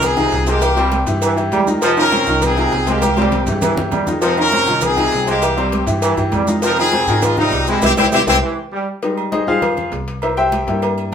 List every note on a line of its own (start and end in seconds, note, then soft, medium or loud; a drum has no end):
0.00 0.29 C2 loud
0.00 0.11 D#3 medium
0.00 0.11 D#4 medium
0.00 0.11 F4 medium
0.00 0.48 G#4 loud
0.00 cowbell loud
0.00 high conga soft
0.00 low conga medium
0.00 low agogo loud
0.00 maracas medium
0.04 0.48 C4 medium
0.17 0.33 C3 medium
0.17 0.41 D#3 medium
0.17 0.42 D#4 medium
0.17 0.42 F4 medium
0.17 high conga soft
0.17 low conga medium
0.17 low agogo medium
0.17 maracas soft
0.31 1.01 C2 loud
0.31 cowbell medium
0.31 high conga soft
0.31 low timbale medium
0.31 maracas soft
0.47 0.59 C3 medium
0.47 0.63 G#3 medium
0.47 1.04 A#3 medium
0.47 0.59 C4 medium
0.47 1.03 G4 loud
0.47 0.60 C5 medium
0.47 cowbell medium
0.47 maracas medium
0.62 0.74 E3 medium
0.62 0.74 E4 medium
0.62 0.75 G4 medium
0.62 cowbell loud
0.62 high conga soft
0.62 low agogo loud
0.62 maracas medium
0.76 1.01 C3 loud
0.76 1.01 G3 medium
0.76 1.01 C4 loud
0.76 1.02 C5 loud
0.76 high conga soft
0.76 low agogo medium
0.76 maracas soft
0.92 cowbell medium
0.92 high conga loud
0.92 low timbale medium
0.92 low agogo medium
0.92 maracas soft
1.06 1.49 G2 loud
1.06 1.31 E3 medium
1.06 1.32 E4 medium
1.06 1.32 G4 medium
1.06 cowbell medium
1.06 high conga soft
1.06 maracas medium
1.21 1.38 E3 medium
1.21 cowbell loud
1.21 high conga soft
1.21 low agogo loud
1.21 maracas medium
1.37 1.61 E3 medium
1.37 1.61 E4 medium
1.37 1.62 G4 medium
1.37 high conga soft
1.37 low agogo medium
1.37 maracas soft
1.52 2.21 F2 loud
1.52 1.68 G3 medium
1.52 cowbell medium
1.52 high conga medium
1.52 low timbale medium
1.52 low agogo loud
1.52 maracas soft
1.67 1.79 D#3 medium
1.67 1.80 D#4 medium
1.67 1.80 F4 medium
1.67 high conga medium
1.67 maracas medium
1.82 1.94 C3 medium
1.82 2.05 F3 loud
1.82 1.91 G#3 medium
1.82 1.94 C4 medium
1.82 1.90 D#4 loud
1.82 1.95 C5 medium
1.82 cowbell loud
1.82 high conga soft
1.82 low agogo medium
1.82 maracas loud
1.97 2.09 D#3 medium
1.97 2.40 C#4 medium
1.97 2.10 D#4 medium
1.97 2.10 F4 medium
1.97 2.40 A#4 loud
1.97 high conga soft
1.97 low agogo loud
1.97 maracas soft
2.12 2.24 C3 medium
2.12 2.24 C4 loud
2.12 2.25 C5 medium
2.12 cowbell medium
2.12 high conga loud
2.12 low timbale medium
2.12 low agogo loud
2.12 maracas soft
2.26 2.69 C2 loud
2.26 2.51 D#3 medium
2.26 2.43 D#3 medium
2.26 2.51 D#4 medium
2.26 2.52 F4 medium
2.26 high conga soft
2.26 maracas medium
2.42 2.88 C4 medium
2.42 2.88 G#4 loud
2.42 cowbell loud
2.42 high conga soft
2.42 low conga medium
2.42 low agogo loud
2.42 maracas medium
2.57 2.73 C3 medium
2.57 2.81 D#3 medium
2.57 2.81 D#4 medium
2.57 2.82 F4 medium
2.57 high conga soft
2.57 low agogo medium
2.57 maracas soft
2.71 3.41 C2 loud
2.71 cowbell medium
2.71 high conga soft
2.71 low timbale medium
2.71 maracas soft
2.87 2.99 C3 medium
2.87 3.03 G#3 medium
2.87 3.48 A#3 medium
2.87 2.99 C4 medium
2.87 3.48 G4 medium
2.87 3.00 C5 medium
2.87 cowbell medium
2.87 high conga medium
2.87 maracas medium
3.02 3.15 E3 medium
3.02 3.15 E4 medium
3.02 3.15 G4 medium
3.02 cowbell loud
3.02 high conga loud
3.02 high timbale medium
3.02 low agogo loud
3.02 maracas medium
3.17 3.42 C3 loud
3.17 3.40 G3 medium
3.17 3.42 C4 loud
3.17 3.42 C5 loud
3.17 high conga medium
3.17 low agogo medium
3.17 maracas soft
3.22 high timbale loud
3.32 cowbell medium
3.32 low conga medium
3.32 low agogo medium
3.32 maracas soft
3.46 3.75 G2 loud
3.46 3.72 E3 medium
3.46 3.72 E4 medium
3.46 3.72 G4 medium
3.46 cowbell medium
3.46 low conga medium
3.46 maracas medium
3.52 low timbale loud
3.62 3.78 E3 medium
3.62 cowbell loud
3.62 low conga loud
3.62 low timbale medium
3.62 low agogo loud
3.62 maracas medium
3.72 low timbale medium
3.76 3.91 G2 medium
3.76 4.02 E3 medium
3.76 4.02 E4 medium
3.76 4.02 G4 medium
3.76 low conga loud
3.76 low agogo medium
3.76 maracas soft
3.82 low timbale medium
3.91 4.61 F2 loud
3.91 4.08 G3 medium
3.91 cowbell medium
3.91 low conga loud
3.91 low timbale loud
3.91 low agogo loud
3.91 maracas soft
4.07 4.20 D#3 medium
4.07 4.20 D#4 medium
4.07 4.20 F4 medium
4.07 low conga loud
4.07 maracas medium
4.12 low timbale medium
4.22 4.35 C3 medium
4.22 4.46 F3 medium
4.22 4.37 G#3 medium
4.22 4.35 C4 medium
4.22 4.37 D#4 loud
4.22 4.35 C5 medium
4.22 cowbell loud
4.22 high conga soft
4.22 low agogo medium
4.22 maracas medium
4.37 4.50 D#3 medium
4.37 4.80 C#4 medium
4.37 4.50 D#4 medium
4.37 4.50 F4 medium
4.37 4.80 A#4 loud
4.37 high conga soft
4.37 low agogo loud
4.37 maracas soft
4.52 4.64 C3 medium
4.52 4.65 C4 medium
4.52 4.65 C5 medium
4.52 cowbell medium
4.52 high conga medium
4.52 low timbale medium
4.52 low agogo medium
4.52 maracas soft
4.66 5.09 C2 loud
4.66 4.92 D#3 medium
4.66 4.83 D#3 medium
4.66 4.92 D#4 medium
4.66 4.92 F4 medium
4.66 high conga soft
4.66 maracas medium
4.81 5.29 C4 medium
4.81 5.28 G#4 loud
4.81 cowbell loud
4.81 high conga soft
4.81 low conga medium
4.81 low agogo loud
4.81 maracas loud
4.97 5.13 C3 medium
4.97 5.21 D#3 medium
4.97 5.22 D#4 medium
4.97 5.22 F4 medium
4.97 high conga soft
4.97 low conga medium
4.97 low agogo medium
4.97 maracas soft
5.12 5.82 C2 medium
5.12 cowbell medium
5.12 high conga soft
5.12 low timbale medium
5.12 maracas soft
5.27 5.39 C3 medium
5.27 5.43 G#3 medium
5.27 5.84 A#3 medium
5.27 5.39 C4 medium
5.27 5.84 G4 medium
5.27 5.40 C5 medium
5.27 cowbell medium
5.27 maracas medium
5.42 5.54 E3 medium
5.42 5.54 E4 medium
5.42 5.54 G4 medium
5.42 cowbell loud
5.42 high conga soft
5.42 low agogo loud
5.42 maracas medium
5.57 5.82 C3 medium
5.57 5.81 G3 medium
5.57 5.82 C4 loud
5.57 5.82 C5 loud
5.57 high conga soft
5.57 low agogo medium
5.57 maracas soft
5.72 cowbell medium
5.72 high conga loud
5.72 low timbale medium
5.72 low agogo medium
5.72 maracas soft
5.86 6.15 G2 loud
5.86 6.11 E3 medium
5.86 6.12 E4 medium
5.86 6.12 G4 medium
5.86 cowbell medium
5.86 maracas medium
6.02 6.18 E3 medium
6.02 cowbell loud
6.02 high conga soft
6.02 low agogo loud
6.02 maracas loud
6.17 6.31 G2 medium
6.17 6.42 E3 medium
6.17 6.42 E4 medium
6.17 6.42 G4 medium
6.17 high conga soft
6.17 low agogo medium
6.17 maracas soft
6.32 7.02 F2 loud
6.32 6.48 G3 medium
6.32 cowbell medium
6.32 high conga medium
6.32 low timbale medium
6.32 low agogo loud
6.32 maracas soft
6.47 6.60 D#3 medium
6.47 6.60 D#4 medium
6.47 6.60 F4 medium
6.47 high conga medium
6.47 maracas medium
6.62 6.75 C3 medium
6.62 6.87 F3 medium
6.62 6.75 C4 medium
6.62 6.78 D#4 medium
6.62 6.77 A#4 loud
6.62 6.75 C5 medium
6.62 cowbell loud
6.62 high conga soft
6.62 low agogo medium
6.62 maracas loud
6.77 6.90 D#3 medium
6.77 7.20 C4 medium
6.77 6.91 D#4 medium
6.77 6.91 F4 medium
6.77 7.20 G#4 loud
6.77 high conga soft
6.77 low agogo loud
6.77 maracas soft
6.92 7.05 C3 medium
6.92 7.05 C4 medium
6.92 7.05 C5 medium
6.92 cowbell medium
6.92 high conga loud
6.92 low timbale medium
6.92 low agogo medium
6.92 maracas soft
7.07 7.49 G#2 loud
7.07 7.23 D#3 medium
7.07 7.33 D#3 medium
7.07 7.33 D#4 medium
7.07 7.33 F4 medium
7.07 high conga soft
7.07 maracas medium
7.22 7.38 G#3 medium
7.22 7.38 F4 loud
7.22 cowbell loud
7.22 high conga soft
7.22 low conga medium
7.22 low agogo loud
7.22 maracas loud
7.37 7.54 C3 medium
7.37 7.62 D#3 medium
7.37 7.66 G3 medium
7.37 7.65 D#4 loud
7.37 7.62 D#4 medium
7.37 7.63 F4 medium
7.37 high conga soft
7.37 low conga medium
7.37 low agogo medium
7.37 maracas soft
7.52 7.80 C2 loud
7.52 cowbell medium
7.52 high conga soft
7.52 low timbale loud
7.52 maracas soft
7.67 7.80 C3 medium
7.67 7.82 G3 medium
7.67 7.83 G#3 medium
7.67 7.80 C4 medium
7.67 7.82 E4 loud
7.67 7.80 C5 medium
7.67 cowbell medium
7.67 maracas medium
7.82 7.93 C2 loud
7.82 7.92 C4 loud
7.82 7.90 C4 loud
7.82 7.92 E4 loud
7.82 7.90 E4 loud
7.82 7.92 G4 loud
7.82 7.90 G4 loud
7.82 cowbell loud
7.82 high conga loud
7.82 high timbale loud
7.82 maracas loud
7.97 8.08 C2 loud
7.97 8.21 G3 medium
7.97 8.07 C4 loud
7.97 8.05 C4 loud
7.97 8.07 E4 loud
7.97 8.05 E4 loud
7.97 8.07 G4 loud
7.97 8.05 G4 loud
7.97 cowbell loud
7.97 high conga loud
7.97 high timbale loud
7.97 maracas loud
8.12 8.23 C2 loud
8.12 8.22 C4 loud
8.12 8.20 C4 loud
8.12 8.22 E4 loud
8.12 8.20 E4 loud
8.12 8.22 G4 loud
8.12 8.20 G4 loud
8.12 cowbell loud
8.12 high conga loud
8.12 high timbale loud
8.12 maracas loud
8.27 8.38 C2 loud
8.27 8.37 C4 loud
8.27 8.35 C4 loud
8.27 8.37 E4 loud
8.27 8.35 E4 loud
8.27 8.37 G4 loud
8.27 8.35 G4 loud
8.27 cowbell loud
8.27 high conga loud
8.27 high timbale loud
8.27 maracas loud
8.42 8.58 E3 medium
8.72 8.88 G3 medium
9.02 9.45 G3 medium
9.02 9.45 G#3 soft
9.02 9.31 D#4 medium
9.02 cowbell loud
9.02 high conga soft
9.02 low agogo medium
9.17 high conga soft
9.17 low agogo loud
9.32 9.47 D#4 medium
9.32 9.47 G#4 medium
9.32 9.47 C5 medium
9.32 9.47 D#5 medium
9.32 cowbell medium
9.32 high conga medium
9.32 low timbale medium
9.32 low agogo medium
9.47 9.89 F2 loud
9.47 9.61 G3 soft
9.47 9.61 G#3 soft
9.47 9.61 D#4 medium
9.47 9.90 F4 medium
9.47 9.90 G#4 medium
9.47 9.90 C5 medium
9.47 9.90 F5 loud
9.47 high conga soft
9.62 cowbell loud
9.62 high conga soft
9.62 low conga medium
9.62 low agogo loud
9.77 high conga soft
9.77 low conga medium
9.77 low agogo medium
9.92 10.62 C2 loud
9.92 cowbell medium
9.92 high conga soft
9.92 low timbale medium
10.08 cowbell medium
10.22 10.37 E4 medium
10.22 10.37 A#4 medium
10.22 10.36 C5 medium
10.22 10.36 E5 medium
10.22 cowbell loud
10.22 high conga soft
10.22 low agogo loud
10.37 10.79 G4 medium
10.37 10.79 C5 medium
10.37 10.79 E5 medium
10.37 10.79 G5 loud
10.37 high conga soft
10.37 low agogo medium
10.52 cowbell medium
10.52 high conga medium
10.52 low timbale medium
10.52 low agogo medium
10.67 11.09 G2 loud
10.67 11.14 G3 medium
10.67 11.14 A#3 medium
10.67 11.14 E4 medium
10.67 cowbell medium
10.67 high conga soft
10.82 cowbell loud
10.82 high conga soft
10.82 low agogo loud
10.97 high conga soft
10.97 low agogo medium